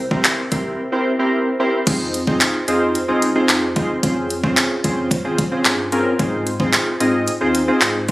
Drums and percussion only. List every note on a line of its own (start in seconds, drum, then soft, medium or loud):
0.11 kick loud
0.24 clap loud
0.24 closed hi-hat loud
0.52 kick loud
0.52 closed hi-hat medium
1.87 kick loud
1.87 closed hi-hat loud
1.87 crash loud
2.14 closed hi-hat medium
2.27 kick loud
2.41 clap loud
2.41 closed hi-hat loud
2.68 closed hi-hat medium
2.95 closed hi-hat medium
3.22 closed hi-hat medium
3.49 clap loud
3.49 closed hi-hat medium
3.76 kick loud
3.76 closed hi-hat medium
4.03 kick loud
4.03 closed hi-hat loud
4.30 closed hi-hat medium
4.44 kick loud
4.57 clap loud
4.57 closed hi-hat loud
4.84 kick loud
4.84 closed hi-hat medium
5.11 kick loud
5.11 closed hi-hat medium
5.38 kick loud
5.38 closed hi-hat medium
5.65 clap loud
5.65 closed hi-hat medium
5.92 closed hi-hat medium
6.19 kick loud
6.19 closed hi-hat medium
6.47 closed hi-hat medium
6.60 kick loud
6.73 clap loud
6.73 closed hi-hat loud
7.00 closed hi-hat medium
7.28 closed hi-hat medium
7.55 closed hi-hat medium
7.81 clap loud
7.81 closed hi-hat medium
8.08 closed hi-hat medium